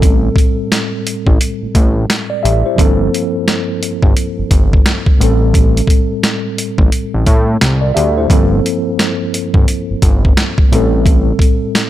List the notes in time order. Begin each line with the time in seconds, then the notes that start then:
Already playing: A1 A2 G3 C4 A4
0.02 kick, closed hi-hat
0.36 kick, closed hi-hat
0.72 snare, closed hi-hat
1.07 closed hi-hat
1.27 A1, kick
1.41 closed hi-hat
1.63 A1
1.75 A1, kick, closed hi-hat
2.10 snare, closed hi-hat
2.30 D5
2.43 A1 G4 E5, closed hi-hat
2.66 E4 C5
2.75 G2 F3 A#3, kick
2.79 G1 C4 A4, closed hi-hat
3.14 closed hi-hat
3.48 snare, closed hi-hat
3.83 closed hi-hat
4.03 G1, kick
4.17 closed hi-hat
4.39 G1
4.51 G1, kick, closed hi-hat
4.73 kick
4.86 snare, closed hi-hat
5.06 kick
5.17 A1 A2 G3
5.21 C4 A4, closed hi-hat
5.54 kick, closed hi-hat
5.77 closed hi-hat
5.87 kick, closed hi-hat
6.23 snare, closed hi-hat
6.58 closed hi-hat
6.78 A1, kick
6.92 closed hi-hat
7.14 A1
7.26 A2, kick, closed hi-hat
7.61 C2, snare, closed hi-hat
7.81 D5
7.94 D2 G4 E5, closed hi-hat
8.17 E4 C5
8.26 G1 G2 F3 A#3, kick
8.30 C4 A4, closed hi-hat
8.66 closed hi-hat
8.99 snare, closed hi-hat
9.34 closed hi-hat
9.54 G1, kick
9.68 closed hi-hat
9.90 G1
10.02 G1, kick, closed hi-hat
10.25 kick
10.37 snare, closed hi-hat
10.58 kick
10.69 A1 A2 G3, closed hi-hat
10.73 C4 A4
11.06 kick, closed hi-hat
11.39 kick, closed hi-hat
11.75 snare, closed hi-hat